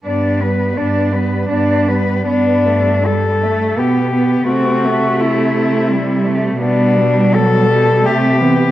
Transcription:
<<
  \new Staff \with { instrumentName = "Cello" } { \time 3/4 \key g \major \tempo 4 = 84 d''8 b'8 d''8 b'8 d''8 b'8 | d'4 a'4 g'4 | fis'4 e'4. r8 | d'4 a'4 g'4 | }
  \new Staff \with { instrumentName = "Cello" } { \time 3/4 \key g \major d'8 b8 d'8 b8 d'8 b8 | b8 a8 g8 a8 b8 b8 | a2 g4 | g2 a8 b8 | }
  \new Staff \with { instrumentName = "Cello" } { \time 3/4 \key g \major b8 g8 b8 g8 b8 g8 | b4 g8 a8 b8 b8 | c'8 a4. g8 a8 | b8 g8 fis8 g8 a8 e8 | }
  \new Staff \with { instrumentName = "Cello" } { \clef bass \time 3/4 \key g \major g,4 g,4 g,4 | g,2 b,4 | c2. | b,2 c4 | }
>>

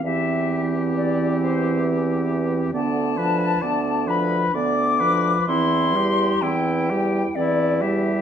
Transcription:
<<
  \new Staff \with { instrumentName = "Flute" } { \time 3/4 \key c \major \tempo 4 = 65 e''8 r8 d''8 c''8 r4 | a''4. b''8 d'''4 | c'''4 g''4 d''8 e''8 | }
  \new Staff \with { instrumentName = "Oboe" } { \time 3/4 \key c \major g'2. | d''8 b'8 d''8 b'8 d''8 b'8 | e'8 g'8 e'8 g'8 e'8 g'8 | }
  \new Staff \with { instrumentName = "Clarinet" } { \time 3/4 \key c \major c'2. | b8 d'8 b8 d'8 b8 d'8 | c'8 e'8 c'8 e'8 c'8 e'8 | }
  \new Staff \with { instrumentName = "French horn" } { \clef bass \time 3/4 \key c \major e2. | d8 f8 d8 f8 d8 f8 | e8 g8 e8 g8 e8 g8 | }
  \new Staff \with { instrumentName = "Bassoon" } { \clef bass \time 3/4 \key c \major e,2. | d,4 d,4 d,4 | e,4 e,4 e,4 | }
>>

